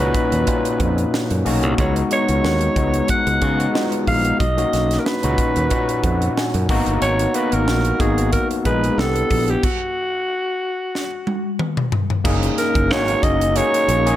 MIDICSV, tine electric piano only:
0, 0, Header, 1, 2, 480
1, 0, Start_track
1, 0, Key_signature, 6, "major"
1, 0, Tempo, 654308
1, 1309, Time_signature, 4, 2, 24, 8
1, 10391, End_track
2, 0, Start_track
2, 0, Title_t, "Tine electric piano"
2, 0, Program_c, 0, 4
2, 0, Control_c, 0, 64, 127
2, 0, Note_on_c, 0, 46, 93
2, 0, Note_on_c, 0, 61, 91
2, 0, Note_on_c, 0, 63, 81
2, 0, Note_on_c, 0, 66, 110
2, 322, Note_off_c, 0, 46, 0
2, 324, Note_off_c, 0, 61, 0
2, 325, Note_off_c, 0, 63, 0
2, 326, Note_off_c, 0, 66, 0
2, 339, Note_on_c, 0, 46, 81
2, 342, Note_on_c, 0, 61, 75
2, 346, Note_on_c, 0, 63, 70
2, 347, Note_on_c, 0, 65, 95
2, 1019, Note_off_c, 0, 46, 0
2, 1020, Note_off_c, 0, 61, 0
2, 1023, Note_off_c, 0, 63, 0
2, 1023, Note_off_c, 0, 65, 0
2, 1064, Note_on_c, 0, 58, 90
2, 1067, Note_on_c, 0, 61, 90
2, 1069, Note_on_c, 0, 63, 76
2, 1072, Note_on_c, 0, 66, 100
2, 1292, Note_off_c, 0, 58, 0
2, 1293, Note_off_c, 0, 61, 0
2, 1294, Note_off_c, 0, 63, 0
2, 1296, Note_off_c, 0, 66, 0
2, 1305, Note_on_c, 0, 56, 61
2, 1307, Note_on_c, 0, 59, 66
2, 1310, Note_on_c, 0, 63, 64
2, 1313, Note_on_c, 0, 66, 71
2, 1320, Control_c, 0, 64, 0
2, 1429, Control_c, 0, 64, 127
2, 1532, Note_off_c, 0, 56, 0
2, 1533, Note_off_c, 0, 59, 0
2, 1535, Note_off_c, 0, 63, 0
2, 1536, Note_off_c, 0, 66, 0
2, 1547, Note_on_c, 0, 56, 72
2, 1549, Note_on_c, 0, 59, 66
2, 1552, Note_on_c, 0, 63, 68
2, 1555, Note_on_c, 0, 66, 78
2, 1998, Note_off_c, 0, 56, 0
2, 1999, Note_off_c, 0, 59, 0
2, 2000, Note_off_c, 0, 63, 0
2, 2002, Note_off_c, 0, 66, 0
2, 2025, Note_on_c, 0, 56, 70
2, 2031, Note_on_c, 0, 59, 72
2, 2034, Note_on_c, 0, 63, 67
2, 2035, Note_on_c, 0, 66, 78
2, 2477, Note_off_c, 0, 56, 0
2, 2480, Note_off_c, 0, 59, 0
2, 2482, Note_off_c, 0, 63, 0
2, 2482, Note_off_c, 0, 66, 0
2, 2505, Note_on_c, 0, 56, 80
2, 2508, Note_on_c, 0, 59, 76
2, 2511, Note_on_c, 0, 63, 76
2, 2514, Note_on_c, 0, 66, 98
2, 2732, Note_off_c, 0, 56, 0
2, 2734, Note_off_c, 0, 59, 0
2, 2735, Note_off_c, 0, 63, 0
2, 2737, Note_off_c, 0, 66, 0
2, 2745, Note_on_c, 0, 56, 69
2, 2748, Note_on_c, 0, 59, 63
2, 2750, Note_on_c, 0, 63, 63
2, 2754, Note_on_c, 0, 65, 73
2, 3227, Note_off_c, 0, 56, 0
2, 3228, Note_off_c, 0, 59, 0
2, 3229, Note_off_c, 0, 63, 0
2, 3232, Note_off_c, 0, 65, 0
2, 3239, Control_c, 0, 64, 0
2, 3354, Note_on_c, 0, 58, 81
2, 3357, Note_on_c, 0, 61, 74
2, 3360, Note_on_c, 0, 63, 72
2, 3361, Control_c, 0, 64, 127
2, 3362, Note_on_c, 0, 66, 99
2, 3801, Note_off_c, 0, 58, 0
2, 3803, Note_off_c, 0, 61, 0
2, 3804, Note_off_c, 0, 63, 0
2, 3805, Note_off_c, 0, 66, 0
2, 3837, Note_on_c, 0, 46, 79
2, 3841, Note_on_c, 0, 61, 74
2, 3843, Note_on_c, 0, 63, 77
2, 3846, Note_on_c, 0, 66, 97
2, 4166, Note_off_c, 0, 46, 0
2, 4167, Note_off_c, 0, 61, 0
2, 4168, Note_off_c, 0, 63, 0
2, 4170, Note_off_c, 0, 66, 0
2, 4188, Note_on_c, 0, 46, 69
2, 4190, Note_on_c, 0, 61, 64
2, 4193, Note_on_c, 0, 63, 65
2, 4196, Note_on_c, 0, 66, 83
2, 4433, Note_on_c, 0, 78, 74
2, 4654, Note_off_c, 0, 78, 0
2, 4676, Note_on_c, 0, 80, 62
2, 4863, Note_off_c, 0, 46, 0
2, 4864, Note_off_c, 0, 61, 0
2, 4866, Note_off_c, 0, 63, 0
2, 4867, Note_off_c, 0, 66, 0
2, 4896, Note_off_c, 0, 80, 0
2, 4912, Note_on_c, 0, 58, 93
2, 4914, Note_on_c, 0, 59, 94
2, 4916, Note_on_c, 0, 82, 80
2, 4917, Note_on_c, 0, 63, 84
2, 4918, Control_c, 0, 64, 0
2, 4921, Note_on_c, 0, 66, 111
2, 5045, Control_c, 0, 64, 127
2, 5136, Note_off_c, 0, 82, 0
2, 5360, Note_off_c, 0, 58, 0
2, 5361, Note_off_c, 0, 59, 0
2, 5363, Note_off_c, 0, 63, 0
2, 5365, Note_off_c, 0, 66, 0
2, 5388, Note_on_c, 0, 58, 76
2, 5390, Note_on_c, 0, 59, 67
2, 5394, Note_on_c, 0, 63, 64
2, 5395, Note_on_c, 0, 66, 88
2, 5838, Note_off_c, 0, 58, 0
2, 5839, Note_off_c, 0, 59, 0
2, 5841, Note_off_c, 0, 63, 0
2, 5842, Note_off_c, 0, 66, 0
2, 5866, Note_on_c, 0, 58, 77
2, 5871, Note_on_c, 0, 59, 69
2, 5873, Note_on_c, 0, 63, 66
2, 5874, Note_on_c, 0, 66, 82
2, 6317, Note_off_c, 0, 58, 0
2, 6320, Note_off_c, 0, 59, 0
2, 6321, Note_off_c, 0, 63, 0
2, 6321, Note_off_c, 0, 66, 0
2, 6346, Note_on_c, 0, 56, 89
2, 6348, Note_on_c, 0, 59, 73
2, 6352, Note_on_c, 0, 63, 75
2, 6355, Note_on_c, 0, 68, 91
2, 6572, Note_off_c, 0, 56, 0
2, 6573, Note_off_c, 0, 59, 0
2, 6575, Note_off_c, 0, 63, 0
2, 6577, Note_off_c, 0, 68, 0
2, 6583, Note_on_c, 0, 59, 72
2, 6585, Note_on_c, 0, 62, 68
2, 6589, Note_on_c, 0, 64, 66
2, 6589, Note_on_c, 0, 67, 78
2, 6599, Control_c, 0, 64, 0
2, 6720, Control_c, 0, 64, 127
2, 7066, Note_off_c, 0, 59, 0
2, 7067, Note_off_c, 0, 62, 0
2, 7068, Note_off_c, 0, 64, 0
2, 7069, Note_off_c, 0, 67, 0
2, 7079, Control_c, 0, 64, 0
2, 8981, Note_on_c, 0, 58, 100
2, 8984, Note_on_c, 0, 61, 81
2, 8985, Note_on_c, 0, 63, 93
2, 8990, Note_on_c, 0, 68, 114
2, 9113, Control_c, 0, 64, 127
2, 9434, Note_off_c, 0, 58, 0
2, 9435, Note_off_c, 0, 61, 0
2, 9436, Note_off_c, 0, 63, 0
2, 9438, Note_off_c, 0, 68, 0
2, 9464, Note_on_c, 0, 58, 79
2, 9468, Note_on_c, 0, 61, 72
2, 9471, Note_on_c, 0, 63, 69
2, 9474, Note_on_c, 0, 66, 92
2, 9915, Note_off_c, 0, 58, 0
2, 9917, Note_off_c, 0, 61, 0
2, 9918, Note_off_c, 0, 63, 0
2, 9920, Note_off_c, 0, 66, 0
2, 9943, Note_on_c, 0, 58, 78
2, 9949, Note_on_c, 0, 61, 69
2, 9952, Note_on_c, 0, 63, 71
2, 9953, Note_on_c, 0, 68, 83
2, 10287, Note_off_c, 0, 58, 0
2, 10290, Note_off_c, 0, 61, 0
2, 10292, Note_off_c, 0, 63, 0
2, 10292, Note_off_c, 0, 68, 0
2, 10312, Note_on_c, 0, 58, 87
2, 10315, Note_on_c, 0, 61, 76
2, 10321, Note_on_c, 0, 63, 73
2, 10321, Note_on_c, 0, 68, 89
2, 10391, Note_off_c, 0, 58, 0
2, 10391, Note_off_c, 0, 61, 0
2, 10391, Note_off_c, 0, 63, 0
2, 10391, Note_off_c, 0, 68, 0
2, 10391, End_track
0, 0, End_of_file